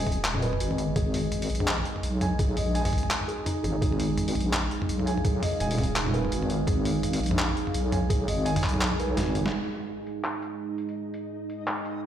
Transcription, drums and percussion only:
0.07 kick medium
0.07 mid tom medium
0.07 open hi-hat soft
0.12 closed hi-hat medium
0.25 clap loud
0.25 closed hi-hat medium
0.35 mid tom medium
0.42 closed hi-hat soft
0.53 mid tom medium
0.60 closed hi-hat medium
0.71 mid tom medium
0.78 closed hi-hat medium
0.96 kick loud
0.96 closed hi-hat medium
0.96 mid tom medium
1.14 mid tom soft
1.14 open hi-hat medium
1.32 closed hi-hat medium
1.32 mid tom medium
1.42 open hi-hat medium
1.50 closed hi-hat soft
1.55 closed hi-hat medium
1.60 mid tom medium
1.68 clap loud
1.68 closed hi-hat medium
1.78 mid tom medium
1.85 closed hi-hat soft
1.96 mid tom soft
2.03 closed hi-hat medium
2.21 closed hi-hat medium
2.21 mid tom medium
2.39 kick loud
2.39 closed hi-hat medium
2.39 mid tom soft
2.57 mid tom medium
2.57 open hi-hat medium
2.75 closed hi-hat medium
2.85 mid tom medium
2.85 open hi-hat medium
2.93 kick medium
2.93 open hi-hat soft
2.98 closed hi-hat medium
3.03 mid tom medium
3.11 clap loud
3.11 closed hi-hat medium
3.21 mid tom soft
3.29 closed hi-hat soft
3.46 closed hi-hat medium
3.46 mid tom medium
3.64 closed hi-hat medium
3.64 mid tom soft
3.82 kick loud
3.82 closed hi-hat medium
3.92 mid tom soft
4.00 open hi-hat medium
4.18 closed hi-hat medium
4.18 mid tom medium
4.28 open hi-hat medium
4.35 closed hi-hat soft
4.35 mid tom soft
4.40 closed hi-hat medium
4.53 clap loud
4.53 closed hi-hat medium
4.53 mid tom soft
4.71 closed hi-hat soft
4.82 mid tom medium
4.89 closed hi-hat medium
5.00 mid tom soft
5.07 closed hi-hat medium
5.18 mid tom soft
5.25 kick loud
5.25 closed hi-hat medium
5.43 mid tom medium
5.43 open hi-hat medium
5.60 closed hi-hat medium
5.60 mid tom medium
5.71 open hi-hat medium
5.78 kick medium
5.78 mid tom medium
5.78 open hi-hat soft
5.83 closed hi-hat medium
5.96 clap loud
5.96 closed hi-hat medium
6.07 mid tom medium
6.14 closed hi-hat soft
6.25 mid tom soft
6.32 closed hi-hat medium
6.42 mid tom medium
6.50 closed hi-hat medium
6.67 kick loud
6.67 closed hi-hat medium
6.67 mid tom medium
6.85 mid tom medium
6.85 open hi-hat medium
7.03 closed hi-hat medium
7.03 mid tom medium
7.13 open hi-hat medium
7.21 closed hi-hat soft
7.23 closed hi-hat soft
7.26 closed hi-hat medium
7.29 closed hi-hat soft
7.29 mid tom medium
7.39 clap loud
7.39 closed hi-hat medium
7.49 mid tom medium
7.57 closed hi-hat soft
7.67 mid tom medium
7.74 closed hi-hat medium
7.92 closed hi-hat medium
7.92 mid tom medium
8.10 kick loud
8.10 closed hi-hat medium
8.10 mid tom medium
8.28 mid tom medium
8.28 open hi-hat medium
8.46 closed hi-hat medium
8.56 mid tom medium
8.56 open hi-hat medium
8.64 kick medium
8.64 clap medium
8.64 open hi-hat soft
8.69 closed hi-hat medium
8.74 mid tom medium
8.81 clap loud
8.81 closed hi-hat medium
8.92 mid tom medium
9.00 closed hi-hat soft
9.17 snare medium
9.17 closed hi-hat medium
9.17 mid tom medium
9.28 high tom medium
9.35 closed hi-hat medium
9.35 mid tom medium
9.46 snare medium
9.71 closed hi-hat medium
10.07 closed hi-hat medium
10.24 clap loud
10.42 closed hi-hat medium
10.78 closed hi-hat medium
10.89 closed hi-hat soft
11.14 closed hi-hat medium
11.50 closed hi-hat medium
11.68 clap loud
11.85 closed hi-hat medium

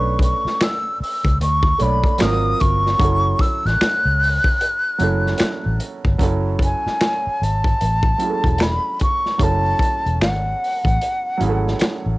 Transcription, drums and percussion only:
0.19 kick medium
0.19 closed hi-hat medium
0.47 snare soft
0.60 finger snap medium
0.60 snare loud
0.60 closed hi-hat medium
1.03 open hi-hat medium
1.25 kick medium
1.25 closed hi-hat soft
1.41 closed hi-hat medium
1.63 kick medium
1.79 closed hi-hat medium
2.04 kick medium
2.04 closed hi-hat soft
2.18 finger snap medium
2.18 snare loud
2.18 closed hi-hat medium
2.60 kick medium
2.60 closed hi-hat medium
2.86 snare soft
2.99 kick loud
2.99 closed hi-hat medium
3.39 kick medium
3.39 closed hi-hat medium
3.66 snare soft
3.66 closed hi-hat soft
3.81 finger snap medium
3.81 snare loud
3.81 closed hi-hat medium
4.23 open hi-hat medium
4.44 kick medium
4.61 closed hi-hat medium
5.00 closed hi-hat medium
5.27 snare soft
5.38 finger snap medium
5.38 snare loud
5.38 closed hi-hat medium
5.80 closed hi-hat medium
6.05 kick medium
6.19 kick medium
6.19 closed hi-hat medium
6.59 kick medium
6.59 closed hi-hat medium
6.87 snare soft
7.00 finger snap medium
7.00 snare loud
7.00 closed hi-hat medium
7.43 closed hi-hat medium
7.64 kick medium
7.64 closed hi-hat soft
7.81 closed hi-hat medium
8.03 kick medium
8.20 closed hi-hat medium
8.44 kick medium
8.44 closed hi-hat soft
8.58 finger snap medium
8.58 snare loud
8.58 closed hi-hat medium
8.99 kick medium
8.99 closed hi-hat medium
9.26 snare soft
9.40 kick medium
9.40 closed hi-hat medium
9.79 kick medium
9.79 closed hi-hat medium
10.06 closed hi-hat soft
10.21 finger snap medium
10.21 snare loud
10.21 closed hi-hat medium
10.64 open hi-hat soft
10.85 kick medium
10.85 closed hi-hat soft
11.01 closed hi-hat medium
11.40 closed hi-hat medium
11.68 snare soft
11.79 finger snap medium
11.79 snare loud
11.79 closed hi-hat medium

